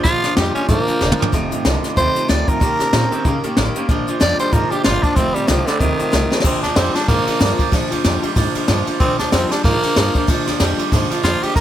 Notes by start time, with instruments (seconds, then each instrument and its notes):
0.04 upright bass A#1, clean electric guitar A#2 F3, steel-string acoustic guitar A#2 F3 G#3 D4 F4, tenor saxophone F4, kick, snare, closed hi-hat
0.23 upright bass D#2, clean electric guitar A#2 F3, steel-string acoustic guitar G#3 D4 F4, snare, closed hi-hat
0.36 upright bass F2, clean electric guitar A#2 G3, steel-string acoustic guitar A#2 F3 G#3 D4 F4, tenor saxophone G4, snare, closed hi-hat
0.55 clean electric guitar A#2 G3, steel-string acoustic guitar G#3 D4 F4, tenor saxophone C#4, muted upright bass stroke, closed hi-hat
0.68 upright bass G#2, clean electric guitar A#2 F3, steel-string acoustic guitar F3 G#3 D4 F4, tenor saxophone A#3, kick, snare, closed hi-hat
0.87 clean electric guitar A#2 F3, steel-string acoustic guitar G#3 D4 F4, muted upright bass stroke, closed hi-hat
1.01 upright bass E1, steel-string acoustic guitar A#2 F3 G#3 D4 F4, clean electric guitar A#2 F3, snare
1.12 mid tom
1.19 clean electric guitar A#2 F3, steel-string acoustic guitar G#3 D4 F4, floor tom
1.32 upright bass F1, steel-string acoustic guitar F2 C3 D#3 A3 D#4 F4, clean electric guitar F2 C3, kick, snare, closed hi-hat
1.51 upright bass A#1, clean electric guitar F2 C3, steel-string acoustic guitar D#3 A3 D#4 F4, closed hi-hat
1.65 upright bass C2, steel-string acoustic guitar F2 C3 D#3 A3 D#4 F4, clean electric guitar F2 D3, snare, closed hi-hat
1.83 clean electric guitar F2 D3, steel-string acoustic guitar D#3 A3 D#4 F4, muted upright bass stroke, snare, closed hi-hat
1.96 upright bass D#2, clean electric guitar F2 C3, steel-string acoustic guitar D#3 A3 D#4 F4, tenor saxophone C5, kick, closed hi-hat
2.15 clean electric guitar F2 C3, steel-string acoustic guitar D#3 A3 D#4 F4, muted upright bass stroke, closed hi-hat
2.28 upright bass D2, steel-string acoustic guitar F2 C3 D#3 A3 D#4 F4, clean electric guitar F2 C3, tenor saxophone D5, snare, closed hi-hat
2.47 clean electric guitar F2 C3, steel-string acoustic guitar D#3 A3 D#4 F4, tenor saxophone A#4, kick, closed hi-hat
2.60 upright bass D#2, steel-string acoustic guitar D#3 A#3 C#4 G4, clean electric guitar D#3 A#3, kick, closed hi-hat
2.79 clean electric guitar D#3 A#3, steel-string acoustic guitar A#3 C#4 G4, snare, closed hi-hat
2.93 upright bass A#2, steel-string acoustic guitar D#3 A#3 C#4 G4, clean electric guitar D#3 C4, snare, closed hi-hat
3.11 clean electric guitar D#3 C4, steel-string acoustic guitar A#3 C#4 G4, muted upright bass stroke, closed hi-hat
3.25 upright bass C#3, steel-string acoustic guitar D#3 A#3 C#4 G4, clean electric guitar D#3 A#3, kick, closed hi-hat
3.44 clean electric guitar D#3 A#3, steel-string acoustic guitar A#3 C#4 G4, muted upright bass stroke, closed hi-hat
3.57 upright bass A1, steel-string acoustic guitar D#3 A#3 C#4 G4, clean electric guitar D#3 A#3, snare, closed hi-hat
3.75 clean electric guitar D#3 A#3, steel-string acoustic guitar A#3 C#4 G4, closed hi-hat
3.89 upright bass A#1, steel-string acoustic guitar A#2 F3 G#3 D4 F4, clean electric guitar A#2 F3, kick, closed hi-hat
4.07 upright bass D#2, clean electric guitar A#2 F3, steel-string acoustic guitar G#3 D4 F4, closed hi-hat
4.20 upright bass F2, steel-string acoustic guitar A#2 F3 G#3 D4 F4, clean electric guitar A#2 G3, tenor saxophone D5, snare, closed hi-hat
4.38 clean electric guitar A#2 G3, steel-string acoustic guitar G#3 D4 F4, tenor saxophone C5, muted upright bass stroke, closed hi-hat
4.52 upright bass G#2, clean electric guitar A#2 F3, steel-string acoustic guitar F3 G#3 D4 F4, tenor saxophone A#4, kick, snare, closed hi-hat
4.70 clean electric guitar A#2 F3, steel-string acoustic guitar G#3 D4 F4, tenor saxophone G4, muted upright bass stroke, closed hi-hat
4.84 upright bass G1, steel-string acoustic guitar A#2 F3 G#3 D4 F4, clean electric guitar A#2 F3, tenor saxophone F4, snare, closed hi-hat
5.02 clean electric guitar A#2 F3, steel-string acoustic guitar G#3 D4 F4, tenor saxophone D4, muted upright bass stroke, kick, closed hi-hat
5.15 upright bass F1, steel-string acoustic guitar F2 C3 D#3 A3 C4 F4, clean electric guitar F2 C3, tenor saxophone C4, kick, closed hi-hat
5.34 upright bass A#1, clean electric guitar F2 C3, steel-string acoustic guitar D#3 A3 C4 F4, tenor saxophone G3, closed hi-hat
5.47 upright bass C2, steel-string acoustic guitar F2 C3 D#3 A3 C4 F4, clean electric guitar F2 D3, tenor saxophone F3, snare, closed hi-hat
5.66 clean electric guitar F2 D3, tenor saxophone D3, steel-string acoustic guitar D#3 A3 C4 F4, snare, closed hi-hat
5.79 upright bass D#2, clean electric guitar F2 C3, tenor saxophone D#3, steel-string acoustic guitar D#3 A3 C4 F4, kick, closed hi-hat
5.98 clean electric guitar F2 C3, steel-string acoustic guitar D#3 A3 C4 F4, muted upright bass stroke, closed hi-hat
6.12 upright bass C2, steel-string acoustic guitar F2 C3 D#3 A3 C4 F4, clean electric guitar F2 C3, snare, closed hi-hat
6.30 clean electric guitar F2 C3, steel-string acoustic guitar D#3 A3 C4 F4, muted upright bass stroke, snare
6.40 steel-string acoustic guitar A#2, tenor saxophone C4, snare
6.44 upright bass A#1, clean electric guitar A#2 F3, steel-string acoustic guitar F3 G#3 D4 F4, kick, snare, crash
6.62 upright bass D#2, clean electric guitar A#2 F3, steel-string acoustic guitar G#3 D4 F4, tenor saxophone D4, snare, ride
6.76 upright bass F2, steel-string acoustic guitar A#2 F3 G#3 D4 F4, clean electric guitar A#2 G3, tenor saxophone C4, snare, ride
6.95 clean electric guitar A#2 G3, steel-string acoustic guitar G#3 D4 F4, tenor saxophone D4, muted upright bass stroke, snare, ride
7.08 upright bass G#2, clean electric guitar A#2 F3, steel-string acoustic guitar F3 G#3 D4 F4, tenor saxophone A#3, kick, snare, ride
7.26 clean electric guitar A#2 F3, steel-string acoustic guitar G#3 D4 F4, muted upright bass stroke, ride
7.39 upright bass G2, steel-string acoustic guitar A#2 F3 G#3 D4 F4, clean electric guitar A#2 F3, snare, ride
7.57 clean electric guitar A#2 F3, steel-string acoustic guitar G#3 D4 F4, kick, ride
7.72 upright bass A#1, steel-string acoustic guitar A#2 F3 G#3 D4 F4, clean electric guitar A#2 F3, kick, snare, ride
7.90 upright bass D#2, clean electric guitar A#2 F3, steel-string acoustic guitar G#3 D4 F4, ride
8.04 upright bass F2, clean electric guitar A#2 G3, steel-string acoustic guitar A#2 F3 G#3 D4 F4, snare, ride
8.22 clean electric guitar A#2 G3, steel-string acoustic guitar G#3 D4 F4, muted upright bass stroke, ride
8.36 upright bass G#2, clean electric guitar A#2 F3, steel-string acoustic guitar F3 G#3 D4 F4, kick, snare, ride
8.54 clean electric guitar A#2 F3, steel-string acoustic guitar G#3 D4 F4, muted upright bass stroke, ride
8.68 upright bass G2, steel-string acoustic guitar A#2 F3 G#3 D4 F4, clean electric guitar A#2 F3, snare, ride
8.86 clean electric guitar A#2 F3, steel-string acoustic guitar G#3 D4 F4, muted upright bass stroke, ride
9.00 upright bass A#1, steel-string acoustic guitar A#2 F3 G#3 D4 F4, clean electric guitar A#2 F3, tenor saxophone C4, kick, ride
9.18 upright bass D#2, clean electric guitar A#2 F3, steel-string acoustic guitar G#3 D4 F4, tenor saxophone D4, snare, ride
9.32 upright bass F2, steel-string acoustic guitar A#2 F3 G#3 D4 F4, clean electric guitar A#2 G3, tenor saxophone C4, snare, ride
9.50 clean electric guitar A#2 G3, steel-string acoustic guitar G#3 D4 F4, tenor saxophone D4, muted upright bass stroke, snare, ride
9.64 upright bass G#2, clean electric guitar A#2 F3, steel-string acoustic guitar F3 G#3 D4 F4, tenor saxophone A#3, kick, snare, ride
9.82 clean electric guitar A#2 F3, steel-string acoustic guitar G#3 D4 F4, muted upright bass stroke, ride
9.96 upright bass G2, steel-string acoustic guitar A#2 F3 G#3 D4 F4, clean electric guitar A#2 F3, snare, ride
10.14 clean electric guitar A#2 F3, steel-string acoustic guitar G#3 D4 F4, kick, ride
10.27 upright bass A#1, steel-string acoustic guitar A#2 F3 G#3 D4 F4, clean electric guitar A#2 F3, kick, snare, ride
10.46 upright bass D#2, clean electric guitar A#2 F3, steel-string acoustic guitar G#3 D4 F4, snare, ride
10.60 upright bass F2, steel-string acoustic guitar A#2 F3 G#3 D4 F4, clean electric guitar A#2 G3, snare, ride
10.78 clean electric guitar A#2 G3, steel-string acoustic guitar G#3 D4 F4, muted upright bass stroke, ride
10.92 upright bass G#2, clean electric guitar A#2 F3, steel-string acoustic guitar F3 G#3 D4 F4, kick, snare, ride
11.10 clean electric guitar A#2 F3, steel-string acoustic guitar G#3 D4 F4, muted upright bass stroke, ride
11.23 upright bass F2, steel-string acoustic guitar A#2 F3 G#3 D4 F4, clean electric guitar A#2 F3, tenor saxophone F4, snare, ride
11.43 clean electric guitar A#2 F3, steel-string acoustic guitar G#3 D4 F4, tenor saxophone G4, muted upright bass stroke, ride
11.55 upright bass D#2, clean electric guitar D#3 A#3, steel-string acoustic guitar D#3 A#3 C#4, tenor saxophone A#4, kick, ride